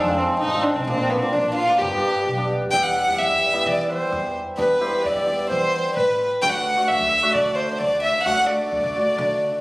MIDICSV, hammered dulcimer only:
0, 0, Header, 1, 2, 480
1, 0, Start_track
1, 0, Key_signature, 1, "minor"
1, 0, Tempo, 460829
1, 926, Time_signature, 4, 2, 24, 8
1, 10007, End_track
2, 0, Start_track
2, 0, Title_t, "Hammered dulcimer"
2, 0, Program_c, 0, 15
2, 82, Note_on_c, 0, 60, 81
2, 83, Note_on_c, 0, 53, 84
2, 89, Note_on_c, 0, 56, 71
2, 324, Note_off_c, 0, 60, 0
2, 548, Note_off_c, 0, 53, 0
2, 549, Note_off_c, 0, 56, 0
2, 557, Note_on_c, 0, 53, 70
2, 562, Note_on_c, 0, 56, 62
2, 567, Note_on_c, 0, 60, 78
2, 745, Note_off_c, 0, 60, 0
2, 905, Note_off_c, 0, 53, 0
2, 918, Note_on_c, 0, 53, 60
2, 922, Note_on_c, 0, 58, 56
2, 922, Note_on_c, 0, 62, 75
2, 979, Note_off_c, 0, 56, 0
2, 1105, Note_off_c, 0, 58, 0
2, 1105, Note_off_c, 0, 62, 0
2, 1265, Note_off_c, 0, 53, 0
2, 1270, Note_on_c, 0, 62, 70
2, 1275, Note_on_c, 0, 58, 58
2, 1277, Note_on_c, 0, 53, 68
2, 1520, Note_off_c, 0, 62, 0
2, 1522, Note_off_c, 0, 58, 0
2, 1741, Note_off_c, 0, 53, 0
2, 1753, Note_on_c, 0, 53, 72
2, 1757, Note_on_c, 0, 58, 61
2, 1761, Note_on_c, 0, 62, 76
2, 1873, Note_off_c, 0, 62, 0
2, 1878, Note_on_c, 0, 59, 68
2, 1881, Note_on_c, 0, 55, 74
2, 1883, Note_off_c, 0, 58, 0
2, 1885, Note_on_c, 0, 62, 88
2, 1942, Note_off_c, 0, 53, 0
2, 1980, Note_off_c, 0, 59, 0
2, 1984, Note_off_c, 0, 55, 0
2, 1984, Note_off_c, 0, 62, 0
2, 1996, Note_on_c, 0, 55, 74
2, 2001, Note_on_c, 0, 62, 72
2, 2002, Note_on_c, 0, 59, 68
2, 2246, Note_off_c, 0, 62, 0
2, 2247, Note_off_c, 0, 59, 0
2, 2460, Note_off_c, 0, 55, 0
2, 2472, Note_on_c, 0, 55, 73
2, 2474, Note_on_c, 0, 59, 67
2, 2477, Note_on_c, 0, 62, 87
2, 2663, Note_off_c, 0, 59, 0
2, 2665, Note_off_c, 0, 62, 0
2, 2832, Note_off_c, 0, 55, 0
2, 2843, Note_on_c, 0, 55, 57
2, 2846, Note_on_c, 0, 64, 70
2, 2848, Note_on_c, 0, 59, 62
2, 3029, Note_off_c, 0, 64, 0
2, 3031, Note_off_c, 0, 59, 0
2, 3193, Note_off_c, 0, 55, 0
2, 3205, Note_on_c, 0, 55, 60
2, 3209, Note_on_c, 0, 59, 51
2, 3212, Note_on_c, 0, 64, 72
2, 3451, Note_off_c, 0, 59, 0
2, 3453, Note_off_c, 0, 64, 0
2, 3667, Note_off_c, 0, 55, 0
2, 3679, Note_on_c, 0, 55, 70
2, 3681, Note_on_c, 0, 59, 68
2, 3687, Note_on_c, 0, 64, 82
2, 4168, Note_off_c, 0, 59, 0
2, 4171, Note_off_c, 0, 64, 0
2, 4754, Note_off_c, 0, 55, 0
2, 4763, Note_on_c, 0, 59, 62
2, 4767, Note_on_c, 0, 55, 66
2, 4769, Note_on_c, 0, 62, 74
2, 4889, Note_off_c, 0, 59, 0
2, 4892, Note_off_c, 0, 62, 0
2, 4992, Note_off_c, 0, 55, 0
2, 5001, Note_on_c, 0, 59, 54
2, 5004, Note_on_c, 0, 55, 69
2, 5005, Note_on_c, 0, 64, 81
2, 5248, Note_off_c, 0, 59, 0
2, 5250, Note_off_c, 0, 64, 0
2, 5469, Note_off_c, 0, 55, 0
2, 5482, Note_on_c, 0, 55, 53
2, 5487, Note_on_c, 0, 59, 61
2, 5488, Note_on_c, 0, 64, 68
2, 5971, Note_off_c, 0, 59, 0
2, 5971, Note_off_c, 0, 64, 0
2, 6686, Note_on_c, 0, 57, 71
2, 6690, Note_on_c, 0, 62, 61
2, 6697, Note_on_c, 0, 66, 73
2, 6747, Note_off_c, 0, 55, 0
2, 6872, Note_off_c, 0, 57, 0
2, 6872, Note_off_c, 0, 62, 0
2, 6873, Note_off_c, 0, 66, 0
2, 7043, Note_on_c, 0, 57, 58
2, 7050, Note_on_c, 0, 62, 57
2, 7053, Note_on_c, 0, 66, 68
2, 7288, Note_off_c, 0, 57, 0
2, 7292, Note_off_c, 0, 62, 0
2, 7292, Note_off_c, 0, 66, 0
2, 7525, Note_on_c, 0, 57, 72
2, 7529, Note_on_c, 0, 66, 82
2, 7530, Note_on_c, 0, 62, 73
2, 8008, Note_off_c, 0, 57, 0
2, 8009, Note_off_c, 0, 66, 0
2, 8010, Note_off_c, 0, 62, 0
2, 8598, Note_on_c, 0, 57, 61
2, 8601, Note_on_c, 0, 62, 52
2, 8602, Note_on_c, 0, 66, 76
2, 8723, Note_off_c, 0, 57, 0
2, 8725, Note_off_c, 0, 62, 0
2, 8725, Note_off_c, 0, 66, 0
2, 8839, Note_on_c, 0, 57, 67
2, 8840, Note_on_c, 0, 66, 65
2, 8842, Note_on_c, 0, 62, 53
2, 9082, Note_off_c, 0, 66, 0
2, 9083, Note_off_c, 0, 57, 0
2, 9084, Note_off_c, 0, 62, 0
2, 9327, Note_on_c, 0, 57, 54
2, 9329, Note_on_c, 0, 62, 46
2, 9333, Note_on_c, 0, 66, 68
2, 9805, Note_off_c, 0, 62, 0
2, 9806, Note_off_c, 0, 57, 0
2, 9806, Note_off_c, 0, 66, 0
2, 10007, End_track
0, 0, End_of_file